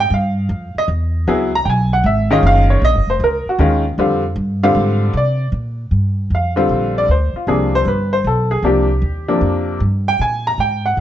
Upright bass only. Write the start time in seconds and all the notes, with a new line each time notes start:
0.10 G2
0.49 F2
0.75 muted upright bass stroke
0.88 E2
1.27 C#2
1.65 B1
2.04 G#1
2.43 F#1
2.82 A#1
2.95 F#1
3.07 F1
3.20 C#2
3.46 muted upright bass stroke
3.58 D#2
3.98 F2
4.36 G2
4.75 G#2
5.13 C3
5.52 A#2
5.91 G2
6.30 F2
6.69 A#1
7.08 D2
7.33 muted upright bass stroke
7.47 C2
7.85 G1
8.24 B1
8.62 C2
9.02 D#2
9.41 F2
9.80 G2
10.19 A#2
10.58 G#2
10.97 G2